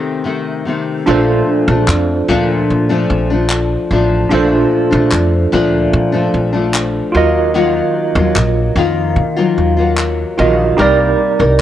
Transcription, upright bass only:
1.07 1.40 A#1 medium
1.68 1.84 A#1 loud
1.88 2.20 F2 loud
2.29 2.61 D2 loud
2.70 3.02 A#2 loud
3.10 3.75 A#1 loud
3.91 4.23 A1 loud
4.31 4.64 A#1 loud
4.93 5.08 A#1 loud
5.12 5.45 F2 loud
5.53 5.85 D2 medium
5.93 6.26 A#2 loud
6.34 6.99 A#1 medium
7.14 7.79 D#2 loud
8.15 8.32 D#2 loud
8.35 8.68 A#1 loud
8.76 9.18 F2 loud
9.16 9.49 D#3 loud
9.58 10.23 D#2 medium
10.39 10.71 A#1 loud
10.79 11.12 C2 loud
11.40 11.56 C2 loud

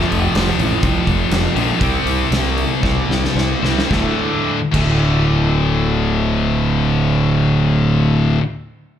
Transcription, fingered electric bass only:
0.11 0.27 F1 medium
0.35 0.50 F1 medium
0.58 0.74 A1 medium
0.83 0.98 C2 medium
1.07 1.23 F1 medium
1.30 1.46 F1 medium
1.55 1.71 A#1 medium
1.81 1.97 C2 medium
2.05 2.22 C2 medium
2.31 2.64 C2 medium
2.83 3.00 C2 medium
3.09 3.26 C2 medium
3.35 3.53 C2 medium
3.63 3.80 C2 medium
3.91 4.06 D1 medium
4.74 8.37 D1 medium

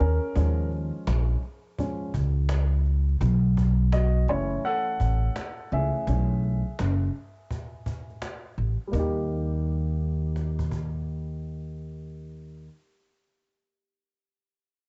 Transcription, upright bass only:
0.00 0.18 D#2 medium
0.36 0.90 D#2 medium
1.07 1.34 A#1 loud
2.14 3.17 C#2 medium
3.21 4.24 B1 loud
4.28 4.55 F#1 medium
5.01 5.27 A1 medium
5.72 5.89 C#2 medium
6.07 6.61 B1 medium
6.80 7.06 F#1 medium
8.58 8.75 A1 medium
8.93 12.67 D#2 medium

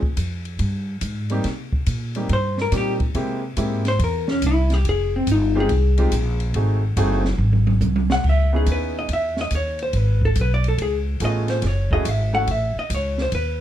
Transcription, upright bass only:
0.00 0.15 D2 medium
0.17 0.58 F2 medium
0.59 1.00 G2 medium
1.01 1.43 G#2 medium
1.44 1.86 C3 medium
1.87 2.28 A#2 medium
2.29 2.71 G2 medium
2.72 3.13 A#2 medium
3.14 3.55 C3 medium
3.57 3.98 G#2 medium
3.99 4.40 E2 medium
4.42 4.83 C2 medium
4.85 5.26 F1 medium
5.27 5.68 G1 medium
5.69 6.10 C2 loud
6.11 6.53 A#1 medium
6.54 6.95 G#1 medium
6.97 7.38 F#1 loud
7.38 7.80 G#1 loud
7.81 8.22 C2 medium
8.24 8.65 C#2 medium
8.66 9.07 D#2 medium
9.08 9.50 E2 medium
9.51 9.92 D#2 medium
9.93 10.34 G#1 medium
10.36 10.77 B1 medium
10.78 11.19 C#2 medium
11.20 11.61 A1 medium
11.62 12.04 F#1 medium
12.05 12.46 G#1 medium
12.47 12.74 A1 medium
12.76 muted upright bass stroke soft
12.90 13.31 C#2 medium
13.32 13.61 D#2 medium

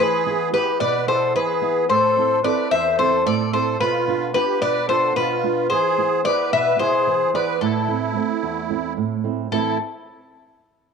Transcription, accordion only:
0.00 0.49 G#4 medium
0.53 0.78 G4 medium
0.80 1.05 B4 medium
1.08 1.33 A4 medium
1.34 1.85 G#4 medium
1.89 2.39 A4 medium
2.43 2.68 B4 medium
2.70 2.96 C5 medium
2.97 3.22 A4 medium
3.24 3.50 A4 medium
3.51 3.77 A4 medium
3.79 4.30 F4 medium
4.34 4.59 G4 medium
4.60 4.86 B4 medium
4.88 5.13 A4 medium
5.17 5.67 F4 medium
5.70 6.21 G#4 medium
6.26 6.51 B4 medium
6.54 6.78 B4 medium
6.80 7.30 G#4 medium
7.34 7.60 B4 medium
7.61 8.93 E4 medium
9.52 9.78 E4 medium

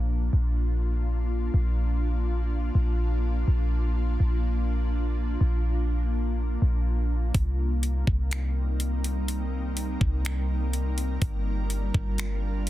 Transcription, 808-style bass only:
0.00 0.30 A#1 loud
0.33 1.50 A#1 loud
1.54 2.71 A#1 loud
2.75 3.45 A#1 loud
3.48 4.17 A#1 loud
4.20 5.37 A#1 loud
5.41 6.58 A#1 loud
6.62 7.32 A#1 loud
7.35 8.04 C2 loud
8.07 9.97 C2 loud
10.01 11.18 C2 loud
11.22 11.91 G1 loud
11.94 12.70 G1 loud

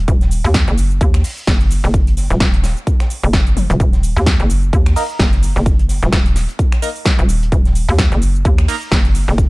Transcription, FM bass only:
0.08 0.42 D#1 loud
0.44 0.66 D#2 loud
0.68 0.99 F#1 loud
1.01 1.23 D#2 loud
1.47 1.82 F#1 loud
1.84 2.28 F#1 loud
2.30 2.39 D#1 loud
2.40 2.75 D#1 medium
3.23 3.68 F#1 loud
3.70 3.78 D#1 loud
3.80 4.14 D#1 loud
4.17 4.38 D#2 loud
4.40 4.71 F#1 loud
4.73 4.95 D#2 loud
5.20 5.54 F#1 loud
5.56 6.00 F#1 loud
6.03 6.11 D#1 loud
6.13 6.47 D#1 loud
7.19 7.51 D#1 loud
7.52 7.86 D#1 medium
7.89 8.10 D#2 loud
8.12 8.43 F#1 loud
8.45 8.67 D#2 loud
8.92 9.26 F#1 loud
9.28 9.49 F#1 loud

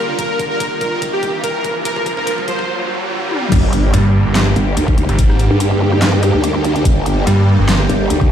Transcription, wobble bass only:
3.52 3.92 G1 loud
4.56 4.75 G1 loud
4.77 4.96 D2 loud
4.98 5.07 D2 loud
5.51 6.32 G2 loud
6.34 6.84 D2 loud
6.85 7.25 G1 loud
7.89 8.09 G1 loud
8.10 8.30 D2 loud

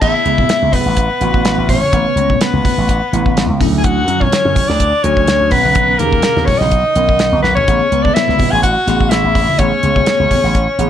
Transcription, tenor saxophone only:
0.02 0.77 E4 medium
0.75 1.70 B3 medium
1.72 2.38 C#4 medium
2.44 3.58 B3 medium
3.80 3.88 G#4 medium
3.87 4.25 F#4 medium
4.23 4.72 C#4 medium
4.70 5.08 D4 medium
5.06 5.55 C#4 medium
5.53 6.01 B3 medium
5.99 6.50 A#3 medium
6.48 6.63 C#4 medium
6.62 7.42 D#4 medium
7.43 7.55 B3 medium
7.57 8.05 C#4 medium
8.04 8.16 D4 medium
8.14 8.54 E4 medium
8.52 8.62 G#4 medium
8.63 9.13 F#4 medium
9.11 9.61 E4 medium
9.59 10.90 C#4 medium

